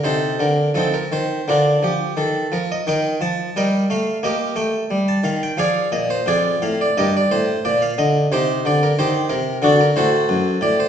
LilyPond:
<<
  \new Staff \with { instrumentName = "Harpsichord" } { \time 4/4 \key ees \lydian \tempo 4 = 88 <ees' a' c''>8 bes'8 <c' ees' a'>16 bes'16 c''8 <d' f' bes'>8 g'8 a'8 bes'16 ees''16 | <bes' ees'' g''>8 a''8 <bes' ees'' g''>8 f''8 <g' bes' ees''>8 g''8. a''16 f''16 g''16 | <aes' d'' f''>8 ees''16 c''16 <f' aes' d''>8 f''16 d''16 <g' bes' ees''>16 d''16 c''8 d''16 f''16 ees''8 | \key c \dorian <ees' g' c''>8 d''16 bes'16 <ees' g' c''>8 bes'8 <d' fis' a'>16 bes'16 <fis' a' c''>4 d''16 c''16 | }
  \new Staff \with { instrumentName = "Harpsichord" } { \clef bass \time 4/4 \key ees \lydian c8 d8 f8 ees8 d8 f8 ees8 f8 | ees8 f8 g8 a8 bes8 a8 g8 ees8 | f8 bes,8 f,8 a,8 g,8 a,8 bes,8 d8 | \key c \dorian c8 d8 ees8 c8 d8 a,8 fis,8 a,8 | }
>>